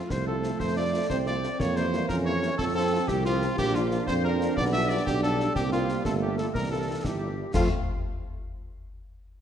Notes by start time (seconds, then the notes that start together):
Already playing: F3 A3 F4
0.10 C2 A3 C5, concert bass drum, snare
0.26 A3 C4 F4 A4
0.43 A3 C4 F4, snare
0.60 F2 C5, concert bass drum, snare
0.77 A3 C4 F4 D5
0.94 A3 C4 F4
1.09 C2 C4 C5, concert bass drum, snare
1.27 A3 C4 F4 D5, snare
1.42 A3 C4 F4, snare
1.59 F2 E3 A#3 C#5, concert bass drum, snare
1.76 G3 A#3 E4 C5, snare
1.93 G3 A#3 E4, snare
2.08 F2 C#4 A#4, concert bass drum, snare
2.26 G3 A#3 E4 C#5
2.42 G3 A#3 E4, snare
2.58 F2 F3 C4 A4, concert bass drum, snare
2.75 F3 C4 F4 A4
2.92 F3 C4 F4
3.08 C2 G4, concert bass drum, snare
3.25 F3 C4 F4, snare
3.41 F3 C4 F4, snare
3.57 A#1 A#3 D4 G4, concert bass drum, snare, crash
3.75 F3 D4 F4, snare
3.91 F3 D4 F4, snare
4.07 F2 C4 C5, concert bass drum, snare
4.24 F3 D4 F4 A#4
4.40 F3 D4 F4, snare
4.56 B1 G3 B3 D5, concert bass drum, snare
4.72 G3 D4 F4 E5
4.89 G3 D4 F4 D5
5.05 B1 D4 G4, concert bass drum, snare
5.23 G3 D4 F4 A4, snare
5.40 G3 D4 F4, snare
5.56 C2 A#3 C4 G4, concert bass drum, snare
5.71 G3 A#3 F4, snare
5.88 G3 A#3 F4, snare
6.05 G1 A3 A4, concert bass drum, snare
6.22 G3 A#3 F4 G4
6.38 G3 A#3 F4 A4, snare
6.53 C2 E3 G3 A#4, concert bass drum, snare
6.71 G3 A#3 E4 A4
6.88 G3 A#3 E4
7.04 G1 E4 G4, concert bass drum, snare
7.21 G3 A#3 E4
7.38 G3 A#3 E4
7.54 F2 F3 A3 C4 F4 F5, concert bass drum, snare, crash